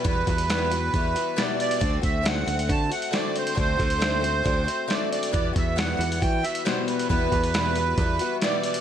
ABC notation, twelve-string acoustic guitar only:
X:1
M:4/4
L:1/8
Q:1/4=136
K:Em
V:1 name="Twelve-string acoustic guitar"
[E,,B,,E,G,B,F] [E,G,B,F] [E,,B,,E,G,B,F] [E,G,B,F] [E,G,B,F] [E,G,B,F] [E,,B,,E,G,B,F]2 | [D,A,CF] [A,CF] [D,A,CF] [A,CF] [D,A,CF] [A,CF] [D,A,CF]2 | [D,A,CF] [A,CF] [D,A,CF] [A,CF] [D,A,CF] [A,CF] [D,A,CF]2 | [E,,B,,E,G,B,F] [E,G,B,F] [E,,B,,E,G,B,F] [E,G,B,F] [E,G,B,F] [E,G,B,F] [E,,B,,E,G,B,F]2 |
[E,,B,,E,G,B,F] [E,G,B,F] [E,,B,,E,G,B,F] [E,G,B,F] [E,G,B,F] [E,G,B,F] [E,,B,,E,G,B,F]2 |]